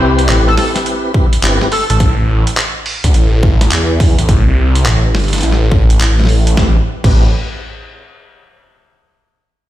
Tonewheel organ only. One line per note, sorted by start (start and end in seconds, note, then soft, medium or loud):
0.00 0.55 C4 medium
0.00 0.55 E4 medium
0.00 0.55 G4 medium
0.00 0.55 B4 loud
0.57 1.12 C4 medium
0.57 1.12 E4 medium
0.57 1.12 G4 medium
0.57 1.12 B4 medium
1.14 1.27 C4 medium
1.14 1.27 E4 medium
1.14 1.27 G4 medium
1.14 1.27 B4 medium
1.43 1.59 C4 medium
1.43 1.59 E4 medium
1.43 1.59 G4 medium
1.43 1.59 B4 medium
1.62 1.69 C4 medium
1.62 1.69 E4 medium
1.62 1.69 G4 medium
1.62 1.69 B4 medium
6.58 6.77 C4 medium
6.58 6.77 E4 medium
6.58 6.77 G4 medium
6.58 6.77 B4 loud
7.05 7.24 C4 medium
7.05 7.24 E4 medium
7.05 7.24 G4 medium
7.05 7.24 B4 medium